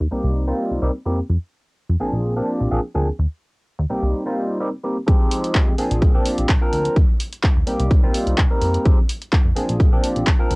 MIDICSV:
0, 0, Header, 1, 4, 480
1, 0, Start_track
1, 0, Key_signature, -4, "minor"
1, 0, Tempo, 472441
1, 1317, Time_signature, 4, 2, 24, 8
1, 10723, End_track
2, 0, Start_track
2, 0, Title_t, "Tine electric piano"
2, 0, Program_c, 0, 4
2, 112, Note_on_c, 0, 55, 72
2, 115, Note_on_c, 0, 58, 67
2, 116, Note_on_c, 0, 60, 68
2, 117, Note_on_c, 0, 63, 66
2, 121, Note_on_c, 0, 67, 80
2, 451, Note_off_c, 0, 55, 0
2, 453, Note_off_c, 0, 58, 0
2, 453, Note_off_c, 0, 60, 0
2, 454, Note_off_c, 0, 63, 0
2, 456, Note_off_c, 0, 67, 0
2, 479, Note_on_c, 0, 55, 71
2, 480, Note_on_c, 0, 58, 66
2, 483, Note_on_c, 0, 60, 67
2, 484, Note_on_c, 0, 63, 64
2, 487, Note_on_c, 0, 65, 82
2, 807, Note_off_c, 0, 55, 0
2, 808, Note_off_c, 0, 58, 0
2, 809, Note_off_c, 0, 60, 0
2, 810, Note_off_c, 0, 63, 0
2, 811, Note_off_c, 0, 65, 0
2, 830, Note_on_c, 0, 55, 76
2, 833, Note_on_c, 0, 58, 70
2, 833, Note_on_c, 0, 60, 69
2, 836, Note_on_c, 0, 63, 74
2, 839, Note_on_c, 0, 67, 86
2, 913, Note_off_c, 0, 55, 0
2, 914, Note_off_c, 0, 58, 0
2, 915, Note_off_c, 0, 60, 0
2, 916, Note_off_c, 0, 63, 0
2, 917, Note_off_c, 0, 67, 0
2, 1071, Note_on_c, 0, 55, 80
2, 1074, Note_on_c, 0, 58, 72
2, 1075, Note_on_c, 0, 60, 73
2, 1077, Note_on_c, 0, 63, 72
2, 1079, Note_on_c, 0, 67, 85
2, 1201, Note_off_c, 0, 55, 0
2, 1203, Note_off_c, 0, 58, 0
2, 1203, Note_off_c, 0, 60, 0
2, 1204, Note_off_c, 0, 63, 0
2, 1205, Note_off_c, 0, 67, 0
2, 2032, Note_on_c, 0, 53, 77
2, 2033, Note_on_c, 0, 58, 65
2, 2035, Note_on_c, 0, 60, 69
2, 2037, Note_on_c, 0, 62, 66
2, 2039, Note_on_c, 0, 68, 84
2, 2371, Note_off_c, 0, 53, 0
2, 2372, Note_off_c, 0, 58, 0
2, 2373, Note_off_c, 0, 60, 0
2, 2374, Note_off_c, 0, 62, 0
2, 2375, Note_off_c, 0, 68, 0
2, 2399, Note_on_c, 0, 53, 73
2, 2402, Note_on_c, 0, 58, 67
2, 2404, Note_on_c, 0, 60, 66
2, 2406, Note_on_c, 0, 62, 71
2, 2408, Note_on_c, 0, 67, 85
2, 2727, Note_off_c, 0, 53, 0
2, 2728, Note_off_c, 0, 58, 0
2, 2729, Note_off_c, 0, 60, 0
2, 2730, Note_off_c, 0, 62, 0
2, 2732, Note_off_c, 0, 67, 0
2, 2752, Note_on_c, 0, 53, 80
2, 2755, Note_on_c, 0, 58, 69
2, 2757, Note_on_c, 0, 60, 71
2, 2758, Note_on_c, 0, 62, 73
2, 2761, Note_on_c, 0, 68, 87
2, 2834, Note_off_c, 0, 53, 0
2, 2835, Note_off_c, 0, 58, 0
2, 2836, Note_off_c, 0, 60, 0
2, 2837, Note_off_c, 0, 62, 0
2, 2838, Note_off_c, 0, 68, 0
2, 2992, Note_on_c, 0, 53, 80
2, 2994, Note_on_c, 0, 58, 72
2, 2996, Note_on_c, 0, 60, 73
2, 2998, Note_on_c, 0, 62, 72
2, 2999, Note_on_c, 0, 68, 85
2, 3122, Note_off_c, 0, 53, 0
2, 3122, Note_off_c, 0, 58, 0
2, 3124, Note_off_c, 0, 60, 0
2, 3125, Note_off_c, 0, 62, 0
2, 3125, Note_off_c, 0, 68, 0
2, 3957, Note_on_c, 0, 55, 77
2, 3958, Note_on_c, 0, 58, 69
2, 3959, Note_on_c, 0, 60, 70
2, 3962, Note_on_c, 0, 63, 65
2, 3965, Note_on_c, 0, 67, 84
2, 4294, Note_off_c, 0, 55, 0
2, 4294, Note_off_c, 0, 58, 0
2, 4295, Note_off_c, 0, 60, 0
2, 4296, Note_off_c, 0, 63, 0
2, 4298, Note_off_c, 0, 67, 0
2, 4322, Note_on_c, 0, 55, 73
2, 4323, Note_on_c, 0, 58, 69
2, 4328, Note_on_c, 0, 60, 67
2, 4329, Note_on_c, 0, 63, 70
2, 4331, Note_on_c, 0, 65, 84
2, 4649, Note_off_c, 0, 55, 0
2, 4649, Note_off_c, 0, 58, 0
2, 4651, Note_off_c, 0, 60, 0
2, 4652, Note_off_c, 0, 63, 0
2, 4653, Note_off_c, 0, 65, 0
2, 4673, Note_on_c, 0, 55, 81
2, 4674, Note_on_c, 0, 58, 69
2, 4676, Note_on_c, 0, 60, 73
2, 4679, Note_on_c, 0, 63, 74
2, 4680, Note_on_c, 0, 67, 87
2, 4754, Note_off_c, 0, 55, 0
2, 4755, Note_off_c, 0, 58, 0
2, 4756, Note_off_c, 0, 60, 0
2, 4757, Note_off_c, 0, 63, 0
2, 4758, Note_off_c, 0, 67, 0
2, 4913, Note_on_c, 0, 55, 81
2, 4916, Note_on_c, 0, 58, 72
2, 4918, Note_on_c, 0, 60, 75
2, 4919, Note_on_c, 0, 63, 74
2, 4921, Note_on_c, 0, 67, 85
2, 5042, Note_off_c, 0, 55, 0
2, 5043, Note_off_c, 0, 58, 0
2, 5044, Note_off_c, 0, 60, 0
2, 5045, Note_off_c, 0, 63, 0
2, 5046, Note_off_c, 0, 67, 0
2, 5149, Note_on_c, 0, 53, 102
2, 5153, Note_on_c, 0, 56, 97
2, 5158, Note_on_c, 0, 60, 95
2, 5161, Note_on_c, 0, 63, 91
2, 5166, Note_on_c, 0, 67, 108
2, 5828, Note_off_c, 0, 53, 0
2, 5830, Note_off_c, 0, 56, 0
2, 5832, Note_off_c, 0, 60, 0
2, 5834, Note_off_c, 0, 63, 0
2, 5837, Note_off_c, 0, 67, 0
2, 5872, Note_on_c, 0, 53, 82
2, 5873, Note_on_c, 0, 58, 76
2, 5877, Note_on_c, 0, 60, 73
2, 5878, Note_on_c, 0, 62, 73
2, 5879, Note_on_c, 0, 68, 87
2, 6212, Note_off_c, 0, 53, 0
2, 6212, Note_off_c, 0, 58, 0
2, 6214, Note_off_c, 0, 60, 0
2, 6214, Note_off_c, 0, 62, 0
2, 6215, Note_off_c, 0, 68, 0
2, 6238, Note_on_c, 0, 53, 79
2, 6241, Note_on_c, 0, 58, 74
2, 6243, Note_on_c, 0, 60, 73
2, 6245, Note_on_c, 0, 62, 75
2, 6247, Note_on_c, 0, 67, 87
2, 6567, Note_off_c, 0, 53, 0
2, 6568, Note_off_c, 0, 58, 0
2, 6569, Note_off_c, 0, 60, 0
2, 6570, Note_off_c, 0, 62, 0
2, 6571, Note_off_c, 0, 67, 0
2, 6716, Note_on_c, 0, 53, 89
2, 6718, Note_on_c, 0, 58, 85
2, 6721, Note_on_c, 0, 60, 84
2, 6722, Note_on_c, 0, 62, 81
2, 6724, Note_on_c, 0, 70, 100
2, 7059, Note_off_c, 0, 53, 0
2, 7060, Note_off_c, 0, 58, 0
2, 7061, Note_off_c, 0, 60, 0
2, 7062, Note_off_c, 0, 62, 0
2, 7063, Note_off_c, 0, 70, 0
2, 7789, Note_on_c, 0, 55, 81
2, 7792, Note_on_c, 0, 58, 76
2, 7793, Note_on_c, 0, 60, 73
2, 7795, Note_on_c, 0, 63, 72
2, 7797, Note_on_c, 0, 67, 88
2, 8130, Note_off_c, 0, 55, 0
2, 8131, Note_off_c, 0, 58, 0
2, 8132, Note_off_c, 0, 60, 0
2, 8133, Note_off_c, 0, 63, 0
2, 8134, Note_off_c, 0, 67, 0
2, 8160, Note_on_c, 0, 55, 82
2, 8162, Note_on_c, 0, 58, 75
2, 8164, Note_on_c, 0, 60, 75
2, 8167, Note_on_c, 0, 63, 74
2, 8167, Note_on_c, 0, 65, 89
2, 8487, Note_off_c, 0, 55, 0
2, 8488, Note_off_c, 0, 58, 0
2, 8490, Note_off_c, 0, 60, 0
2, 8491, Note_off_c, 0, 63, 0
2, 8491, Note_off_c, 0, 65, 0
2, 8637, Note_on_c, 0, 55, 94
2, 8640, Note_on_c, 0, 58, 85
2, 8641, Note_on_c, 0, 60, 85
2, 8643, Note_on_c, 0, 63, 84
2, 8644, Note_on_c, 0, 70, 100
2, 8980, Note_off_c, 0, 55, 0
2, 8981, Note_off_c, 0, 58, 0
2, 8982, Note_off_c, 0, 60, 0
2, 8983, Note_off_c, 0, 63, 0
2, 8983, Note_off_c, 0, 70, 0
2, 8990, Note_on_c, 0, 53, 88
2, 8992, Note_on_c, 0, 56, 81
2, 8995, Note_on_c, 0, 60, 79
2, 8996, Note_on_c, 0, 63, 82
2, 9000, Note_on_c, 0, 67, 97
2, 9121, Note_off_c, 0, 53, 0
2, 9122, Note_off_c, 0, 56, 0
2, 9123, Note_off_c, 0, 60, 0
2, 9124, Note_off_c, 0, 63, 0
2, 9125, Note_off_c, 0, 67, 0
2, 9708, Note_on_c, 0, 53, 81
2, 9712, Note_on_c, 0, 58, 73
2, 9713, Note_on_c, 0, 60, 75
2, 9716, Note_on_c, 0, 62, 72
2, 9717, Note_on_c, 0, 68, 86
2, 10049, Note_off_c, 0, 53, 0
2, 10051, Note_off_c, 0, 58, 0
2, 10052, Note_off_c, 0, 60, 0
2, 10054, Note_off_c, 0, 62, 0
2, 10054, Note_off_c, 0, 68, 0
2, 10080, Note_on_c, 0, 53, 85
2, 10082, Note_on_c, 0, 58, 76
2, 10083, Note_on_c, 0, 60, 73
2, 10086, Note_on_c, 0, 62, 78
2, 10088, Note_on_c, 0, 67, 86
2, 10407, Note_off_c, 0, 53, 0
2, 10409, Note_off_c, 0, 58, 0
2, 10409, Note_off_c, 0, 60, 0
2, 10411, Note_off_c, 0, 62, 0
2, 10412, Note_off_c, 0, 67, 0
2, 10557, Note_on_c, 0, 53, 95
2, 10559, Note_on_c, 0, 58, 83
2, 10561, Note_on_c, 0, 60, 83
2, 10564, Note_on_c, 0, 62, 84
2, 10565, Note_on_c, 0, 70, 102
2, 10723, Note_off_c, 0, 53, 0
2, 10723, Note_off_c, 0, 58, 0
2, 10723, Note_off_c, 0, 60, 0
2, 10723, Note_off_c, 0, 62, 0
2, 10723, Note_off_c, 0, 70, 0
2, 10723, End_track
3, 0, Start_track
3, 0, Title_t, "Analog synth bass"
3, 0, Program_c, 1, 38
3, 3, Note_on_c, 1, 39, 102
3, 77, Note_off_c, 1, 39, 0
3, 118, Note_on_c, 1, 36, 42
3, 219, Note_off_c, 1, 36, 0
3, 242, Note_on_c, 1, 36, 95
3, 533, Note_off_c, 1, 36, 0
3, 722, Note_on_c, 1, 36, 84
3, 796, Note_off_c, 1, 36, 0
3, 835, Note_on_c, 1, 36, 78
3, 919, Note_off_c, 1, 36, 0
3, 1073, Note_on_c, 1, 41, 81
3, 1237, Note_off_c, 1, 41, 0
3, 1316, Note_on_c, 1, 41, 97
3, 1400, Note_off_c, 1, 41, 0
3, 1925, Note_on_c, 1, 41, 104
3, 1998, Note_off_c, 1, 41, 0
3, 2036, Note_on_c, 1, 34, 44
3, 2139, Note_off_c, 1, 34, 0
3, 2160, Note_on_c, 1, 34, 97
3, 2452, Note_off_c, 1, 34, 0
3, 2646, Note_on_c, 1, 34, 87
3, 2718, Note_off_c, 1, 34, 0
3, 2760, Note_on_c, 1, 34, 78
3, 2842, Note_off_c, 1, 34, 0
3, 3000, Note_on_c, 1, 38, 81
3, 3160, Note_off_c, 1, 38, 0
3, 3241, Note_on_c, 1, 39, 96
3, 3322, Note_off_c, 1, 39, 0
3, 3848, Note_on_c, 1, 39, 100
3, 3919, Note_off_c, 1, 39, 0
3, 4089, Note_on_c, 1, 36, 96
3, 4199, Note_off_c, 1, 36, 0
3, 5159, Note_on_c, 1, 41, 100
3, 5241, Note_off_c, 1, 41, 0
3, 5766, Note_on_c, 1, 41, 108
3, 5839, Note_off_c, 1, 41, 0
3, 5877, Note_on_c, 1, 34, 46
3, 5979, Note_off_c, 1, 34, 0
3, 6005, Note_on_c, 1, 34, 101
3, 6295, Note_off_c, 1, 34, 0
3, 6487, Note_on_c, 1, 34, 90
3, 6559, Note_off_c, 1, 34, 0
3, 6595, Note_on_c, 1, 34, 81
3, 6679, Note_off_c, 1, 34, 0
3, 6835, Note_on_c, 1, 38, 88
3, 6998, Note_off_c, 1, 38, 0
3, 7074, Note_on_c, 1, 39, 99
3, 7159, Note_off_c, 1, 39, 0
3, 7684, Note_on_c, 1, 39, 106
3, 7758, Note_off_c, 1, 39, 0
3, 7794, Note_on_c, 1, 36, 47
3, 7898, Note_off_c, 1, 36, 0
3, 7920, Note_on_c, 1, 36, 107
3, 8212, Note_off_c, 1, 36, 0
3, 8401, Note_on_c, 1, 36, 93
3, 8476, Note_off_c, 1, 36, 0
3, 8516, Note_on_c, 1, 36, 81
3, 8600, Note_off_c, 1, 36, 0
3, 8754, Note_on_c, 1, 41, 87
3, 8917, Note_off_c, 1, 41, 0
3, 8997, Note_on_c, 1, 41, 101
3, 9080, Note_off_c, 1, 41, 0
3, 9604, Note_on_c, 1, 41, 104
3, 9677, Note_off_c, 1, 41, 0
3, 9847, Note_on_c, 1, 34, 99
3, 10136, Note_off_c, 1, 34, 0
3, 10327, Note_on_c, 1, 34, 92
3, 10399, Note_off_c, 1, 34, 0
3, 10436, Note_on_c, 1, 34, 82
3, 10520, Note_off_c, 1, 34, 0
3, 10675, Note_on_c, 1, 38, 88
3, 10723, Note_off_c, 1, 38, 0
3, 10723, End_track
4, 0, Start_track
4, 0, Title_t, "Drums"
4, 5159, Note_on_c, 9, 36, 118
4, 5159, Note_on_c, 9, 42, 57
4, 5260, Note_off_c, 9, 36, 0
4, 5261, Note_off_c, 9, 42, 0
4, 5398, Note_on_c, 9, 46, 108
4, 5499, Note_off_c, 9, 46, 0
4, 5527, Note_on_c, 9, 42, 65
4, 5629, Note_off_c, 9, 42, 0
4, 5637, Note_on_c, 9, 36, 101
4, 5638, Note_on_c, 9, 39, 124
4, 5639, Note_on_c, 9, 42, 55
4, 5738, Note_off_c, 9, 36, 0
4, 5740, Note_off_c, 9, 39, 0
4, 5740, Note_off_c, 9, 42, 0
4, 5876, Note_on_c, 9, 46, 92
4, 5977, Note_off_c, 9, 46, 0
4, 6005, Note_on_c, 9, 42, 70
4, 6107, Note_off_c, 9, 42, 0
4, 6116, Note_on_c, 9, 36, 115
4, 6117, Note_on_c, 9, 42, 55
4, 6218, Note_off_c, 9, 36, 0
4, 6219, Note_off_c, 9, 42, 0
4, 6355, Note_on_c, 9, 46, 108
4, 6457, Note_off_c, 9, 46, 0
4, 6482, Note_on_c, 9, 42, 67
4, 6583, Note_off_c, 9, 42, 0
4, 6595, Note_on_c, 9, 36, 105
4, 6595, Note_on_c, 9, 39, 123
4, 6596, Note_on_c, 9, 42, 57
4, 6696, Note_off_c, 9, 36, 0
4, 6697, Note_off_c, 9, 39, 0
4, 6697, Note_off_c, 9, 42, 0
4, 6835, Note_on_c, 9, 46, 92
4, 6937, Note_off_c, 9, 46, 0
4, 6962, Note_on_c, 9, 42, 68
4, 7063, Note_off_c, 9, 42, 0
4, 7075, Note_on_c, 9, 36, 122
4, 7076, Note_on_c, 9, 42, 55
4, 7176, Note_off_c, 9, 36, 0
4, 7177, Note_off_c, 9, 42, 0
4, 7315, Note_on_c, 9, 46, 113
4, 7417, Note_off_c, 9, 46, 0
4, 7443, Note_on_c, 9, 42, 67
4, 7544, Note_off_c, 9, 42, 0
4, 7553, Note_on_c, 9, 39, 125
4, 7554, Note_on_c, 9, 42, 53
4, 7555, Note_on_c, 9, 36, 106
4, 7655, Note_off_c, 9, 39, 0
4, 7655, Note_off_c, 9, 42, 0
4, 7656, Note_off_c, 9, 36, 0
4, 7792, Note_on_c, 9, 46, 97
4, 7894, Note_off_c, 9, 46, 0
4, 7920, Note_on_c, 9, 42, 70
4, 8022, Note_off_c, 9, 42, 0
4, 8034, Note_on_c, 9, 42, 57
4, 8035, Note_on_c, 9, 36, 121
4, 8136, Note_off_c, 9, 36, 0
4, 8136, Note_off_c, 9, 42, 0
4, 8274, Note_on_c, 9, 46, 108
4, 8376, Note_off_c, 9, 46, 0
4, 8402, Note_on_c, 9, 42, 67
4, 8503, Note_off_c, 9, 42, 0
4, 8514, Note_on_c, 9, 39, 124
4, 8515, Note_on_c, 9, 42, 54
4, 8516, Note_on_c, 9, 36, 104
4, 8616, Note_off_c, 9, 39, 0
4, 8616, Note_off_c, 9, 42, 0
4, 8617, Note_off_c, 9, 36, 0
4, 8753, Note_on_c, 9, 46, 96
4, 8854, Note_off_c, 9, 46, 0
4, 8883, Note_on_c, 9, 42, 67
4, 8984, Note_off_c, 9, 42, 0
4, 8996, Note_on_c, 9, 42, 55
4, 8997, Note_on_c, 9, 36, 122
4, 9098, Note_off_c, 9, 42, 0
4, 9099, Note_off_c, 9, 36, 0
4, 9238, Note_on_c, 9, 46, 117
4, 9340, Note_off_c, 9, 46, 0
4, 9365, Note_on_c, 9, 42, 61
4, 9466, Note_off_c, 9, 42, 0
4, 9476, Note_on_c, 9, 36, 113
4, 9477, Note_on_c, 9, 39, 120
4, 9478, Note_on_c, 9, 42, 52
4, 9578, Note_off_c, 9, 36, 0
4, 9579, Note_off_c, 9, 39, 0
4, 9579, Note_off_c, 9, 42, 0
4, 9718, Note_on_c, 9, 46, 96
4, 9820, Note_off_c, 9, 46, 0
4, 9846, Note_on_c, 9, 42, 69
4, 9947, Note_off_c, 9, 42, 0
4, 9957, Note_on_c, 9, 36, 127
4, 9959, Note_on_c, 9, 42, 53
4, 10059, Note_off_c, 9, 36, 0
4, 10061, Note_off_c, 9, 42, 0
4, 10199, Note_on_c, 9, 46, 110
4, 10300, Note_off_c, 9, 46, 0
4, 10325, Note_on_c, 9, 42, 62
4, 10427, Note_off_c, 9, 42, 0
4, 10436, Note_on_c, 9, 36, 110
4, 10436, Note_on_c, 9, 39, 122
4, 10437, Note_on_c, 9, 42, 53
4, 10538, Note_off_c, 9, 36, 0
4, 10538, Note_off_c, 9, 39, 0
4, 10538, Note_off_c, 9, 42, 0
4, 10676, Note_on_c, 9, 46, 98
4, 10723, Note_off_c, 9, 46, 0
4, 10723, End_track
0, 0, End_of_file